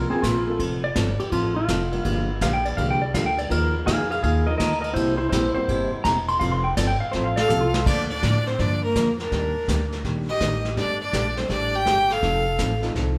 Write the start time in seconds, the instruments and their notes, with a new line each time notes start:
Already playing: electric slide guitar A#4
0.10 honky-tonk piano F3 A#3 C4 F4 A#4, electric slide guitar C4 G#4
0.22 upright bass A#1, hollow-body jazz guitar C3 F3 A#3 F4 A#4, electric slide guitar F4, kick, snare, hi-hat pedal, ride
0.47 honky-tonk piano F3 A3 C4 F4 A4
0.59 upright bass F1, hollow-body jazz guitar F3 C4 F4 A4, kick, ride
0.84 electric slide guitar D5
0.95 upright bass G1, hollow-body jazz guitar F3 C4 F4 A4, kick, snare, hi-hat pedal, ride
1.20 electric slide guitar G4, ride
1.32 upright bass A1, hollow-body jazz guitar F3 C4 F4 A4, electric slide guitar F4, kick, ride
1.56 electric slide guitar F4
1.68 upright bass F1, hollow-body jazz guitar F3 C4 F4 A4, kick, snare, hi-hat pedal, ride
1.92 honky-tonk piano G3 A#3 D4 F4 G4, ride
2.04 upright bass G1, hollow-body jazz guitar D3 F3 A#3 D4 G4, kick, ride
2.41 upright bass A#1, hollow-body jazz guitar D3 F3 A#3 D4 G4, electric slide guitar F5, kick, snare, hi-hat pedal, ride
2.53 electric slide guitar G5
2.65 electric slide guitar D5, ride
2.77 upright bass C2, hollow-body jazz guitar D3 F3 A#3 D4 G4, honky-tonk piano G3 A#3 D4 F4 G4, electric slide guitar F5, kick, ride
2.90 electric slide guitar G5
3.02 electric slide guitar D5
3.13 upright bass D2, hollow-body jazz guitar D3 F3 A#3 D4 G4, honky-tonk piano G3 A#3 D4 F4 A4, electric slide guitar F5, kick, snare, hi-hat pedal, ride
3.26 electric slide guitar G5
3.38 electric slide guitar D5, ride
3.49 upright bass D#2, hollow-body jazz guitar D#3 A#3 D#4 F4 A#4, honky-tonk piano F3 A#3 D#4 F4 A#4, electric slide guitar A#4, kick, ride
3.86 upright bass F2, hollow-body jazz guitar D#3 A#3 D#4 F4 A#4, electric slide guitar G#4 F5, kick, snare, hi-hat pedal, ride
4.10 electric slide guitar G#4 F5, ride
4.23 upright bass D#2, hollow-body jazz guitar D#3 A#3 D#4 F4 A#4, electric slide guitar G#4 F5, kick, ride
4.46 honky-tonk piano F3 A#3 D#4 F4 A#4, electric slide guitar A#4 D#5
4.58 upright bass D2, hollow-body jazz guitar D#3 A#3 D#4 F4 A#4, electric slide guitar A#4 D#5, kick, snare, hi-hat pedal, ride
4.81 electric slide guitar A#4 D#5, ride
4.93 upright bass C2, hollow-body jazz guitar C3 G3 A#3 E4 G4, electric slide guitar E4 C5, kick, ride
5.17 electric slide guitar E4 C5
5.29 upright bass A#1, hollow-body jazz guitar C3 G3 A#3 E4 G4, electric slide guitar E4 C5, kick, snare, hi-hat pedal, ride
5.54 honky-tonk piano G3 A#3 C4 E4 G4, electric slide guitar C5, muted upright bass stroke
5.68 upright bass G1, hollow-body jazz guitar C3 G3 A#3 E4 G4, kick, ride
5.93 muted upright bass stroke
6.04 upright bass E1, hollow-body jazz guitar C3 G3 A#3 E4 G4, electric slide guitar A#5, kick, snare, hi-hat pedal, ride
6.28 electric slide guitar C6, ride
6.39 upright bass F1, hollow-body jazz guitar F3 C4 F4 A4, electric slide guitar F5, kick, ride
6.52 electric slide guitar C6
6.64 electric slide guitar G5
6.77 upright bass G1, hollow-body jazz guitar F3 C4 F4 A4, electric slide guitar D5, kick, snare, hi-hat pedal, ride
6.87 electric slide guitar G5
7.00 electric slide guitar F5, muted upright bass stroke
7.12 upright bass A1, hollow-body jazz guitar F3 C4 F4 A4, electric slide guitar C5, snare
7.24 electric slide guitar F5
7.36 viola A4, electric slide guitar D5, fiddle F5, snare
7.48 upright bass C2, honky-tonk piano F3 A3 C4 F4 A4, hollow-body jazz guitar F3 C4 F4 A4, electric slide guitar G4, hi-hat pedal, mid tom
7.61 electric slide guitar F4
7.74 snare
7.85 upright bass D2, hollow-body jazz guitar D3 F3 A#3 D4 A#4, viola D4, fiddle D5, brush sweep, kick, snare, crash
8.10 viola D4, fiddle D5
8.22 upright bass A2, hollow-body jazz guitar D3 F3 A#3 D4 A#4, kick, snare, hi-hat pedal
8.47 viola C4, fiddle C5, snare
8.59 upright bass G2, hollow-body jazz guitar D3 F3 A#3 D4 A#4, viola D4, fiddle D5, brush sweep, kick, snare
8.84 viola A#3, fiddle A#4
8.95 upright bass F2, hollow-body jazz guitar D3 F3 A#3 D4 A#4, honky-tonk piano F3 A#3 D4 F4 A#4, kick, snare, hi-hat pedal
9.20 viola D4, fiddle A#4, snare
9.31 upright bass D#2, hollow-body jazz guitar D#3 G3 A#3 D4 G4, brush sweep, kick, snare
9.68 upright bass D2, hollow-body jazz guitar D#3 G3 A#3 D4 G4, kick, snare, hi-hat pedal
9.92 snare
10.04 upright bass A#1, hollow-body jazz guitar D#3 G3 A#3 D4 G4, brush sweep, kick, snare
10.29 viola G4, fiddle D#5
10.40 upright bass A1, hollow-body jazz guitar D#3 G3 A#3 D4 G4, honky-tonk piano G3 A#3 D4 D#4 G4, kick, snare, hi-hat pedal
10.65 snare
10.77 upright bass G1, hollow-body jazz guitar G3 A3 D4 G4, viola D4, fiddle D5, brush sweep, kick, snare
11.02 viola D4, fiddle D5
11.13 upright bass A#1, hollow-body jazz guitar G3 A3 D4 G4, kick, snare, hi-hat pedal
11.36 honky-tonk piano G3 A3 D4 G4 A4, viola C4, fiddle C5, snare
11.49 upright bass A1, hollow-body jazz guitar G3 A3 D4 G4, viola D4, fiddle D5, brush sweep, kick, snare
11.74 viola G4, fiddle G5
11.85 upright bass G1, hollow-body jazz guitar G3 A3 D4 G4, kick, snare, hi-hat pedal
12.10 viola A4, fiddle F5, snare
12.22 upright bass F1, hollow-body jazz guitar F3 C4 D#4 A4, brush sweep, kick, snare
12.58 upright bass A1, hollow-body jazz guitar F3 C4 D#4 A4, kick, snare, hi-hat pedal
12.81 honky-tonk piano A3 C4 D#4 F4 A4, snare
12.94 upright bass C2, hollow-body jazz guitar F3 C4 D#4 A4, brush sweep, kick, snare